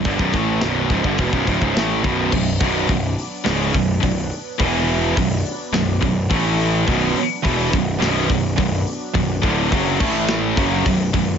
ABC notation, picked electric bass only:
X:1
M:4/4
L:1/16
Q:1/4=106
K:Bm
V:1 name="Picked electric bass" clef=bass
G,,, B,,,, A,,,2 B,,,,2 C,,, G,,, E,,, B,,,, D,,, C,,, A,,,2 B,,,,2 | B,,,,2 B,,,,2 B,,,,2 z2 C,,,2 B,,,,2 B,,,,2 z2 | E,,,4 B,,,,2 z2 B,,,,2 B,,,,2 A,,,4 | B,,,,2 z2 E,,,2 B,,,,2 B,,,,2 B,,,,2 B,,,,2 z2 |
B,,,,2 D,,,2 F,,,2 A,,,4 F,,,2 B,,,,2 B,,,,2 |]